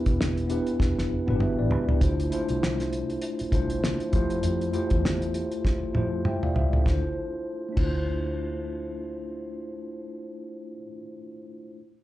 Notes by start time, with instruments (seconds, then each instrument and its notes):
Already playing: tine electric piano B3 D4 E4 G4 B4
0.06 fingered electric bass E1, kick, closed hi-hat
0.21 snare
0.37 closed hi-hat
0.47 tine electric piano B3 D4 E4 G4, closed hi-hat
0.52 tine electric piano B4
0.67 closed hi-hat
0.80 fingered electric bass E1, kick, snare
0.98 fingered electric bass F1, snare
1.26 fingered electric bass G1, tine electric piano B3 D4 E4 F#4 B4, high tom
1.36 tine electric piano G4
1.40 tine electric piano E5, mid tom
1.59 fingered electric bass A1, tine electric piano B4 D5
1.71 fingered electric bass C#2, tine electric piano G4 B4, floor tom
1.89 tine electric piano E4 G4, floor tom
2.00 fingered electric bass D2, tine electric piano A3 D4 E4 F4 C5, kick, closed hi-hat
2.20 closed hi-hat
2.30 tine electric piano A3 D4 E4 F4 C5, closed hi-hat
2.49 fingered electric bass C2, closed hi-hat
2.63 snare
2.80 snare, closed hi-hat
2.93 closed hi-hat
3.10 closed hi-hat
3.22 closed hi-hat
3.39 muted fingered electric bass stroke, closed hi-hat
3.51 fingered electric bass C2, tine electric piano A3 D4 E4 F4, kick, closed hi-hat
3.55 tine electric piano C5
3.70 closed hi-hat
3.84 snare
4.00 closed hi-hat
4.12 fingered electric bass F2, tine electric piano A3 E4 F4 G4, kick, closed hi-hat
4.16 tine electric piano C5
4.30 closed hi-hat
4.43 fingered electric bass F2, closed hi-hat
4.61 closed hi-hat
4.72 tine electric piano A3 E4 F4 G4, closed hi-hat
4.76 tine electric piano C5
4.90 fingered electric bass E2, kick, closed hi-hat
5.05 snare
5.22 closed hi-hat
5.34 closed hi-hat
5.52 closed hi-hat
5.65 kick, snare
5.83 muted fingered electric bass stroke
5.93 fingered electric bass F2, tine electric piano A3 E4 F4 G4 C5, high tom
6.25 tine electric piano E5 G5, mid tom
6.43 tine electric piano D5 F5, mid tom
6.55 fingered electric bass C#2, tine electric piano C5 E5, floor tom
6.73 tine electric piano A4 C5, floor tom
6.78 tine electric piano A3 D4
6.86 fingered electric bass D2, tine electric piano E4, kick, snare
6.90 tine electric piano F4 C5
7.68 tine electric piano A3 D4
7.76 fingered electric bass D2, tine electric piano E4 F4, kick, crash
7.84 tine electric piano C5